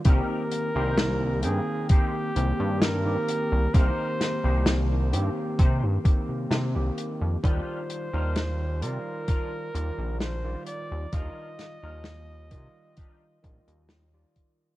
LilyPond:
<<
  \new Staff \with { instrumentName = "Flugelhorn" } { \time 4/4 \key c \minor \tempo 4 = 65 bes'4. aes'8 g'4 bes'4 | c''4. r2 r8 | c''4. bes'4. c''8 d''8 | ees''2. r4 | }
  \new Staff \with { instrumentName = "Clean electric guitar" } { \time 4/4 \key c \minor <c' ees' g' bes'>8 r16 <c' ees' g' c''>16 r4 <c' ees' g' c''>16 r4. r16 | <c' ees' g' bes'>8 r16 <c' ees' g' c''>16 r4 <c' ees' g' c''>16 r4. r16 | <d' ees' f' g'>8 r16 <d' ees' f' bes'>16 r4 <d' ees' f' bes'>16 r4. r16 | <d' ees' f' bes'>8 r16 <d' ees' f' bes'>16 r4 <d' ees' f' g'>16 r4. r16 | }
  \new Staff \with { instrumentName = "Tine electric piano" } { \time 4/4 \key c \minor <ees bes c' g'>8. <ees bes c' g'>8. <ees bes c' g''>4 <ees bes c' g'>8. <ees bes c' g'>8. | <ees bes c' g'>8. <ees bes c' g'>8. <ees bes c' g'>4 <ees bes c' g'>8. <ees bes c' g'>8. | <ees g f' d''>8. <ees g f' d''>8. <ees g f' d''>4 <ees g f' d''>8. <ees g f' d''>8. | <ees g f' f''>8. <ees g f' ees''>8. <ees g f' ees''>4 <ees g f' ees''>8. <ees g f' d''>8. | }
  \new Staff \with { instrumentName = "Analog synth bass" } { \clef bass \time 4/4 \key c \minor c,16 r8 c,8. g,16 r8. c,16 g,8. r16 c,16 | c,16 r8 c,8. g,16 r16 c16 g,16 r16 c16 c16 c,16 r16 f,16 | ees,16 r8 ees,8. c16 r8. ees,16 bes,,8. r16 ees,16 | ees,16 r8 ees,8. c16 r8. bes,,16 ees,8. r8 | }
  \new DrumStaff \with { instrumentName = "Drums" } \drummode { \time 4/4 <hh bd>8 hh8 <hh sn>8 hh8 <hh bd>8 hh8 <hh sn>8 hh8 | <hh bd>8 <hh sn>8 <hh sn>8 hh8 <hh bd>8 <hh bd>8 <hh sn>8 hh8 | <hh bd>8 hh8 <hh sn>8 hh8 <hh bd>8 hh8 <hh sn>8 hh8 | <hh bd>8 <hh sn>8 <hh sn>8 <hh bd>8 <hh bd>8 <hh bd>16 hh16 <hh sn>8 <hh bd>8 | }
>>